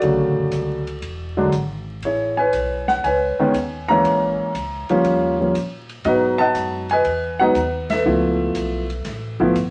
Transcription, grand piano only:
Already playing: F#4 A4 D5
0.03 C#3 D3 F#3 A3
1.37 D3 F#3 G#3 D4
2.05 E4 G#4 C#5
2.37 B4 C#5 G#5
2.88 F#5
3.04 B4 C#5 G#5
3.40 D#3 G#3 B3 C#4
3.88 E3 G#3 A#3 C#4 C#5 E5 A#5
4.90 F3 G3 A#3 C#4
5.40 F3 G3 A#3 C#4
6.05 F#3 G#3 B3 D#4 F#4 B4 D#5
6.38 D#5 F#5 A5
6.91 B4 D#5 G#5
7.39 F#3 G#3 B3 D#4 B4 D#5 F#5
7.90 A4 B4 E5
8.05 F3 A3 B3 E4
9.40 F3 A3 B3 E4

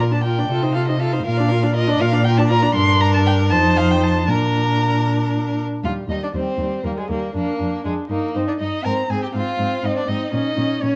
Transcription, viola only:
0.00 F4
0.11 D4
0.25 F4
0.38 D4
0.51 F4
0.63 D#4
0.75 F4
0.89 D#4
1.00 F4
1.13 D#4
1.26 F4
1.40 D4
1.51 F4
1.63 D4
1.76 F4
1.88 D4
2.00 F4
2.13 D4
2.26 F4
2.38 D4
2.50 F4
2.62 D4
2.75 D4
3.51 D#4
4.29 D4
5.84 G3
6.09 G3
6.35 G3
6.59 G3
6.85 G3
7.10 G3
7.35 D4
7.59 D4
7.84 D4
8.10 D#4
8.35 D#4
8.60 D#4
8.85 C4
9.10 C4
9.34 C4
9.60 C4
9.84 C4
10.08 C4
10.33 C#4
10.57 C#4
10.83 C#4

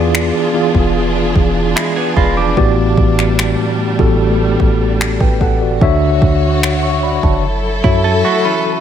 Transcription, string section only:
Already playing: E3 D4 F4 G#4
2.57 G3 A3
5.81 D3 F#4 C#5
7.43 F#3 E4 A4

